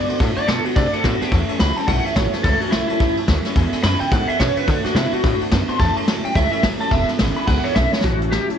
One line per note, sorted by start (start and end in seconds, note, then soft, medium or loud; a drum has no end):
0.00 0.18 D3 medium
0.00 0.18 B3 loud
0.00 0.18 D5 loud
0.09 0.20 A3 medium
0.09 0.20 C4 medium
0.09 0.20 F#4 medium
0.09 0.15 D5 medium
0.09 0.16 F#5 medium
0.09 0.16 C6 loud
0.09 muted upright bass stroke soft
0.09 ride medium
0.20 0.36 A2 medium
0.20 0.37 D3 medium
0.20 0.37 A3 loud
0.20 0.37 C4 loud
0.20 0.36 F#4 loud
0.20 0.30 D5 loud
0.20 0.30 F#5 loud
0.20 0.31 A5 loud
0.20 kick loud
0.20 snare soft
0.20 ride medium
0.37 0.48 A3 soft
0.37 0.49 C4 soft
0.37 0.48 F#4 medium
0.37 0.47 D5 loud
0.37 0.44 D5 medium
0.37 0.44 F#5 medium
0.37 0.44 A5 medium
0.37 muted upright bass stroke medium
0.37 ride medium
0.47 0.64 B2 medium
0.47 0.65 D3 medium
0.47 0.65 A3 medium
0.47 0.74 B3 loud
0.47 0.65 C4 medium
0.47 0.63 F#4 medium
0.47 0.65 A4 loud
0.47 0.58 D5 medium
0.47 0.58 F#5 medium
0.47 0.58 C6 medium
0.47 snare loud
0.47 ride medium
0.65 0.75 A3 soft
0.65 0.76 C4 soft
0.65 0.76 F#4 medium
0.65 0.75 F#4 medium
0.65 0.72 D5 medium
0.65 0.72 F#5 medium
0.65 0.72 A5 medium
0.65 muted upright bass stroke soft
0.65 ride medium
0.75 0.92 C3 medium
0.75 0.93 D3 medium
0.75 0.93 A3 medium
0.75 0.93 C4 medium
0.75 0.91 F#4 loud
0.75 0.92 D5 loud
0.75 0.87 D5 medium
0.75 0.87 F#5 medium
0.75 0.87 A5 loud
0.75 kick loud
0.75 snare soft
0.75 ride medium
0.92 1.04 A3 medium
0.92 1.04 C4 medium
0.92 1.04 F#4 medium
0.92 1.04 A4 medium
0.92 1.00 D5 medium
0.92 1.00 F#5 medium
0.92 1.00 A5 medium
0.92 muted upright bass stroke medium
0.92 ride medium
1.04 1.21 A2 loud
1.04 1.21 D3 medium
1.04 1.21 A3 medium
1.04 1.30 B3 medium
1.04 1.21 C4 medium
1.04 1.21 F#4 medium
1.04 1.20 F#4 medium
1.04 1.15 D5 medium
1.04 1.15 F#5 medium
1.04 1.15 B5 medium
1.04 kick medium
1.04 snare loud
1.04 ride medium
1.21 1.33 A3 soft
1.21 1.33 C4 soft
1.21 1.32 F#4 medium
1.21 1.32 G4 loud
1.21 1.28 D5 medium
1.21 1.28 F#5 medium
1.21 1.28 A5 medium
1.21 muted upright bass stroke medium
1.21 snare soft
1.21 ride medium
1.32 1.48 E2 loud
1.32 1.49 A2 medium
1.32 1.49 E3 medium
1.32 1.50 G3 medium
1.32 1.49 C#4 medium
1.32 1.48 E4 medium
1.32 1.42 C#5 loud
1.32 1.42 E5 loud
1.32 1.43 A5 loud
1.32 kick loud
1.32 ride medium
1.49 1.59 G3 medium
1.49 1.59 C#4 medium
1.49 1.60 E4 medium
1.49 1.55 C#5 medium
1.49 1.56 E5 medium
1.49 1.56 A5 loud
1.49 muted upright bass stroke medium
1.49 ride medium
1.60 1.77 C#2 loud
1.60 1.86 A2 medium
1.60 1.86 F#3 loud
1.60 1.77 G3 medium
1.60 1.77 C#4 medium
1.60 1.75 E4 medium
1.60 1.70 C#5 medium
1.60 1.70 E5 medium
1.60 1.71 F#5 medium
1.60 1.77 B5 loud
1.60 snare loud
1.60 ride medium
1.76 1.86 G3 soft
1.76 1.87 C#4 medium
1.76 1.88 E4 medium
1.76 1.84 C#5 medium
1.76 1.84 E5 medium
1.76 1.84 G5 medium
1.76 1.87 A5 loud
1.76 muted upright bass stroke medium
1.76 ride medium
1.86 2.04 B1 medium
1.86 2.04 A2 medium
1.86 2.05 E3 medium
1.86 2.05 G3 medium
1.86 2.05 C#4 medium
1.86 2.03 E4 loud
1.86 1.98 C#5 loud
1.86 1.99 E5 medium
1.86 2.05 F#5 loud
1.86 1.99 A5 loud
1.86 kick loud
1.86 snare soft
1.86 ride medium
2.04 2.16 G3 soft
2.04 2.17 C#4 medium
2.04 2.16 E4 medium
2.04 2.11 C#5 medium
2.04 2.11 E5 medium
2.04 2.15 E5 medium
2.04 2.12 G5 medium
2.04 muted upright bass stroke medium
2.04 ride medium
2.15 2.32 A1 loud
2.15 2.42 A2 medium
2.15 2.33 E3 medium
2.15 2.42 F#3 loud
2.15 2.33 G3 medium
2.15 2.33 C#4 medium
2.15 2.31 E4 medium
2.15 2.33 C#5 loud
2.15 2.26 C#5 medium
2.15 2.26 E5 medium
2.15 2.26 A5 medium
2.15 kick medium
2.15 snare loud
2.15 ride medium
2.32 2.44 G3 soft
2.32 2.44 C#4 medium
2.32 2.44 E4 medium
2.32 2.43 B4 loud
2.32 2.39 C#5 medium
2.32 2.40 E5 medium
2.32 2.40 A5 medium
2.32 muted upright bass stroke medium
2.32 snare soft
2.32 ride medium
2.43 2.61 C#2 medium
2.43 2.61 A2 medium
2.43 2.61 E3 medium
2.43 2.61 G3 medium
2.43 2.61 C#4 medium
2.43 2.59 E4 medium
2.43 2.61 A4 loud
2.43 2.54 C#5 loud
2.43 2.55 E5 medium
2.43 2.55 B5 loud
2.43 kick loud
2.43 snare soft
2.43 ride medium
2.60 2.71 G3 soft
2.60 2.73 C#4 medium
2.60 2.72 E4 medium
2.60 2.71 F#4 medium
2.60 2.68 C#5 medium
2.60 2.68 E5 medium
2.60 2.68 A5 medium
2.60 muted upright bass stroke medium
2.60 ride medium
2.71 2.88 B1 medium
2.71 2.98 A2 medium
2.71 2.89 E3 medium
2.71 2.98 F#3 loud
2.71 2.87 E4 loud
2.71 2.83 C#5 medium
2.71 2.83 E5 medium
2.71 2.83 B5 medium
2.71 snare loud
2.71 ride medium
2.75 2.88 E4 medium
2.88 3.00 G3 medium
2.88 3.00 C#4 medium
2.88 3.16 E4 loud
2.88 3.00 E4 medium
2.88 2.96 C#5 medium
2.88 2.96 E5 medium
2.88 2.96 A5 medium
2.88 muted upright bass stroke soft
2.88 ride medium
3.00 3.16 C#2 medium
3.00 3.17 A2 medium
3.00 3.17 E3 medium
3.00 3.18 G3 medium
3.00 3.17 C#4 loud
3.00 3.15 E4 loud
3.00 3.10 C#5 loud
3.00 3.11 E5 medium
3.00 3.11 A5 loud
3.00 kick loud
3.00 ride medium
3.17 3.27 G3 medium
3.17 3.28 C#4 medium
3.17 3.28 E4 medium
3.17 3.24 C#5 medium
3.17 3.24 E5 medium
3.17 3.24 A5 medium
3.17 muted upright bass stroke soft
3.17 ride medium
3.27 3.44 D2 loud
3.27 3.53 A2 medium
3.27 3.44 E3 medium
3.27 3.53 F#3 loud
3.27 3.45 G3 medium
3.27 3.45 C#4 medium
3.27 3.44 E4 medium
3.27 3.38 C#5 medium
3.27 3.38 E5 medium
3.27 3.39 A5 loud
3.27 kick medium
3.27 snare loud
3.27 ride medium
3.45 3.57 G3 medium
3.45 3.57 C#4 medium
3.45 3.56 E4 medium
3.45 3.52 C#5 medium
3.45 3.52 E5 medium
3.45 3.52 B5 medium
3.45 snare soft
3.45 ride medium
3.55 3.72 E2 medium
3.55 3.73 E2 medium
3.55 3.73 B2 medium
3.55 3.73 E3 medium
3.55 3.73 G#3 loud
3.55 3.73 D4 medium
3.55 3.72 E4 loud
3.55 3.66 B4 loud
3.55 3.66 E5 loud
3.55 3.66 G#5 loud
3.55 kick loud
3.55 snare soft
3.55 ride medium
3.72 3.82 E3 soft
3.72 3.84 G#3 medium
3.72 3.84 D4 medium
3.72 3.84 E4 medium
3.72 3.79 B4 medium
3.72 3.80 E5 medium
3.72 3.80 G#5 loud
3.72 muted upright bass stroke medium
3.72 snare soft
3.72 ride medium
3.83 4.09 E2 medium
3.83 4.00 F#2 medium
3.83 4.09 C#3 loud
3.83 4.01 E3 medium
3.83 4.01 G#3 medium
3.83 4.00 D4 medium
3.83 4.00 E4 medium
3.83 3.94 B4 medium
3.83 3.94 E5 medium
3.83 3.95 G#5 medium
3.83 4.00 B5 loud
3.83 snare loud
3.83 ride medium
4.00 4.12 G#3 medium
4.00 4.12 D4 medium
4.00 4.12 E4 medium
4.00 4.07 B4 medium
4.00 4.08 E5 medium
4.00 4.11 G5 loud
4.00 4.08 B5 medium
4.00 muted upright bass stroke medium
4.00 ride medium
4.11 4.28 E2 medium
4.11 4.28 G#2 medium
4.11 4.29 B2 medium
4.11 4.29 E3 medium
4.11 4.29 G#3 medium
4.11 4.29 D4 loud
4.11 4.27 E4 loud
4.11 4.22 B4 loud
4.11 4.22 E5 medium
4.11 4.28 F#5 loud
4.11 4.22 G#5 loud
4.11 kick loud
4.11 snare soft
4.11 ride medium
4.28 4.39 E3 soft
4.28 4.40 G#3 medium
4.28 4.40 D4 soft
4.28 4.40 E4 medium
4.28 4.35 B4 medium
4.28 4.39 E5 medium
4.28 4.36 E5 medium
4.28 4.36 G#5 medium
4.28 muted upright bass stroke medium
4.28 ride medium
4.39 4.65 E2 medium
4.39 4.56 B2 loud
4.39 4.66 C#3 loud
4.39 4.57 E3 medium
4.39 4.57 G#3 medium
4.39 4.55 E4 medium
4.39 4.50 B4 medium
4.39 4.56 C#5 medium
4.39 4.50 E5 medium
4.39 4.50 G#5 medium
4.39 kick medium
4.39 snare loud
4.39 ride medium
4.56 4.67 E3 soft
4.56 4.67 G#3 medium
4.56 4.68 D4 medium
4.56 4.67 E4 medium
4.56 4.63 B4 medium
4.56 4.68 B4 loud
4.56 4.64 E5 medium
4.56 4.64 F#5 medium
4.56 muted upright bass stroke medium
4.56 ride medium
4.67 4.84 D3 medium
4.67 4.85 A3 medium
4.67 4.84 C4 loud
4.67 4.83 F#4 medium
4.67 4.84 A4 loud
4.67 4.78 D5 loud
4.67 4.78 F#5 medium
4.67 4.78 A5 loud
4.67 kick loud
4.67 ride medium
4.84 4.96 A3 soft
4.84 4.96 C4 medium
4.84 4.95 F#4 medium
4.84 4.92 D5 medium
4.84 4.92 F#5 medium
4.84 4.92 A5 medium
4.84 muted upright bass stroke medium
4.84 snare soft
4.84 ride medium
4.95 5.12 C3 medium
4.95 5.13 D3 medium
4.95 5.13 A3 medium
4.95 5.21 B3 loud
4.95 5.13 C4 medium
4.95 5.12 E4 loud
4.95 5.11 F#4 medium
4.95 5.06 D5 medium
4.95 5.06 F#5 medium
4.95 5.07 A5 medium
4.95 snare loud
4.95 ride medium
5.12 5.24 A3 soft
5.12 5.24 C4 medium
5.12 5.24 F#4 medium
5.12 5.40 F#4 loud
5.12 5.20 D5 medium
5.12 5.20 F#5 medium
5.12 5.20 A5 medium
5.12 muted upright bass stroke medium
5.12 ride medium
5.24 5.40 A2 medium
5.24 5.41 D3 medium
5.24 5.41 A3 medium
5.24 5.41 C4 loud
5.24 5.39 F#4 loud
5.24 5.34 D5 medium
5.24 5.34 F#5 medium
5.24 5.34 B5 loud
5.24 kick loud
5.24 snare soft
5.24 ride medium
5.40 5.51 A3 soft
5.40 5.52 C4 medium
5.40 5.51 F#4 medium
5.40 5.47 D5 medium
5.40 5.48 F#5 medium
5.40 5.48 A5 medium
5.40 muted upright bass stroke medium
5.40 ride medium
5.51 5.68 F#2 loud
5.51 5.68 D3 medium
5.51 5.69 A3 medium
5.51 5.78 B3 loud
5.51 5.68 C4 medium
5.51 5.66 F#4 medium
5.51 5.62 D5 medium
5.51 5.62 F#5 medium
5.51 5.62 A5 loud
5.51 kick medium
5.51 snare loud
5.51 ride medium
5.67 5.79 A3 medium
5.67 5.80 C4 medium
5.67 5.79 F#4 medium
5.67 5.75 D5 medium
5.67 5.75 F#5 medium
5.67 5.75 A5 medium
5.67 5.79 C6 loud
5.67 muted upright bass stroke medium
5.67 ride medium
5.79 5.95 E2 medium
5.79 5.96 A2 medium
5.79 5.96 E3 medium
5.79 5.97 G3 medium
5.79 5.95 C#4 medium
5.79 5.94 E4 medium
5.79 5.89 C#5 loud
5.79 5.89 E5 medium
5.79 5.97 A5 loud
5.79 5.90 A5 loud
5.79 kick loud
5.79 snare soft
5.79 ride medium
5.95 6.07 G3 medium
5.95 6.07 C#4 medium
5.95 6.07 E4 medium
5.95 6.03 C#5 medium
5.95 6.03 E5 medium
5.95 6.03 A5 medium
5.95 6.08 C6 medium
5.95 muted upright bass stroke medium
5.95 ride medium
6.06 6.23 D2 loud
6.06 6.33 A2 medium
6.06 6.24 E3 medium
6.06 6.34 F#3 medium
6.06 6.25 G3 medium
6.06 6.23 C#4 medium
6.06 6.21 E4 medium
6.06 6.18 C#5 medium
6.06 6.18 E5 medium
6.06 6.18 A5 medium
6.06 6.24 A5 loud
6.06 snare loud
6.06 ride medium
6.23 6.34 G3 medium
6.23 6.35 C#4 medium
6.23 6.35 E4 medium
6.23 6.31 C#5 medium
6.23 6.31 E5 medium
6.23 6.31 G5 medium
6.23 6.35 G5 loud
6.23 muted upright bass stroke soft
6.23 ride medium
6.34 6.52 C#2 medium
6.34 6.52 A2 medium
6.34 6.52 E3 medium
6.34 6.53 G3 medium
6.34 6.52 C#4 medium
6.34 6.50 E4 loud
6.34 6.46 C#5 medium
6.34 6.46 E5 medium
6.34 6.51 E5 loud
6.34 6.46 A5 loud
6.34 kick loud
6.34 snare soft
6.34 ride loud
6.52 6.63 G3 medium
6.52 6.63 C#4 medium
6.52 6.63 E4 medium
6.52 6.59 C#5 medium
6.52 6.63 E5 loud
6.52 6.59 E5 medium
6.52 6.59 B5 medium
6.52 muted upright bass stroke medium
6.52 ride medium
6.63 6.79 A1 loud
6.63 6.90 A2 medium
6.63 6.80 E3 medium
6.63 6.90 F#3 loud
6.63 6.81 G3 medium
6.63 6.81 C#4 medium
6.63 6.79 E4 medium
6.63 6.73 C#5 medium
6.63 6.74 E5 medium
6.63 6.74 A5 medium
6.63 kick medium
6.63 snare loud
6.63 ride medium
6.79 6.93 G3 medium
6.79 6.92 C#4 medium
6.79 6.91 E4 medium
6.79 6.87 C#5 medium
6.79 6.87 E5 medium
6.79 6.87 A5 medium
6.79 6.91 A5 loud
6.79 muted upright bass stroke soft
6.79 ride medium
6.91 7.08 E1 medium
6.91 7.09 E2 medium
6.91 7.09 B2 medium
6.91 7.09 E3 medium
6.91 7.09 G#3 loud
6.91 7.08 D4 loud
6.91 7.07 E4 medium
6.91 7.01 B4 loud
6.91 7.08 E5 loud
6.91 7.02 E5 loud
6.91 7.02 G#5 loud
6.91 kick loud
6.91 ride loud
7.08 7.17 E3 soft
7.08 7.18 G#3 medium
7.08 7.19 D4 medium
7.08 7.19 E4 medium
7.08 7.15 B4 medium
7.08 7.15 E5 medium
7.08 7.15 B5 medium
7.08 snare soft
7.08 ride medium
7.18 7.36 G#1 loud
7.18 7.45 E2 medium
7.18 7.46 C#3 medium
7.18 7.36 E3 medium
7.18 7.37 G#3 medium
7.18 7.36 D4 medium
7.18 7.34 E4 medium
7.18 7.30 B4 medium
7.18 7.30 E5 medium
7.18 7.30 B5 loud
7.18 snare loud
7.18 ride medium
7.35 7.47 E3 soft
7.35 7.47 G#3 medium
7.35 7.48 D4 medium
7.35 7.47 E4 medium
7.35 7.44 B4 medium
7.35 7.44 E5 medium
7.35 7.44 G#5 medium
7.35 7.47 B5 loud
7.35 muted upright bass stroke medium
7.35 ride medium
7.47 7.64 C#2 medium
7.47 7.64 E2 medium
7.47 7.65 B2 medium
7.47 7.65 E3 medium
7.47 7.65 G#3 medium
7.47 7.64 D4 loud
7.47 7.63 E4 loud
7.47 7.58 B4 loud
7.47 7.58 E5 medium
7.47 7.64 F#5 loud
7.47 7.59 G#5 loud
7.47 kick loud
7.47 ride loud
7.64 7.74 E3 medium
7.64 7.75 G#3 medium
7.64 7.76 D4 medium
7.64 7.75 E4 medium
7.64 7.72 B4 medium
7.64 7.75 C#5 medium
7.64 7.72 E5 medium
7.64 7.72 B5 medium
7.64 ride medium
7.75 7.92 B1 loud
7.75 8.02 E2 medium
7.75 8.02 C#3 loud
7.75 7.93 E3 medium
7.75 7.93 G#3 medium
7.75 7.92 D4 medium
7.75 7.91 E4 medium
7.75 7.86 B4 medium
7.75 7.92 E5 loud
7.75 7.86 E5 medium
7.75 7.87 G#5 medium
7.75 kick medium
7.75 snare loud
7.75 ride medium
7.92 8.04 G#3 medium
7.92 8.04 D4 medium
7.92 8.04 E4 medium
7.92 8.00 B4 medium
7.92 8.03 C#5 loud
7.92 8.00 E5 medium
7.92 8.00 G#5 medium
7.92 snare medium
8.01 8.36 A1 medium
8.01 8.21 A2 medium
8.01 8.21 E3 medium
8.01 8.21 G3 medium
8.01 8.31 F#4 loud
8.01 8.15 C#5 medium
8.01 8.15 E5 medium
8.01 kick loud
8.01 snare loud
8.01 closed hi-hat medium
8.05 8.21 C#4 medium
8.05 8.19 E4 medium
8.05 8.15 A5 loud
8.21 8.31 G3 soft
8.21 8.33 C#4 soft
8.21 8.32 E4 medium
8.21 8.28 C#5 medium
8.21 8.28 E5 medium
8.21 8.29 A5 medium
8.21 closed hi-hat medium
8.31 8.58 A2 medium
8.31 8.49 E3 medium
8.31 8.58 F#3 medium
8.31 8.49 G3 medium
8.31 8.49 C#4 medium
8.31 8.47 E4 medium
8.31 8.49 G4 loud
8.31 8.42 C#5 medium
8.31 8.43 E5 medium
8.31 8.43 A5 medium
8.31 snare loud
8.31 closed hi-hat medium
8.48 8.58 G3 soft
8.48 8.58 C#4 soft
8.48 8.58 E4 medium
8.48 8.56 C#5 medium
8.48 8.56 E5 medium
8.48 8.56 A5 medium
8.48 muted upright bass stroke medium
8.48 closed hi-hat medium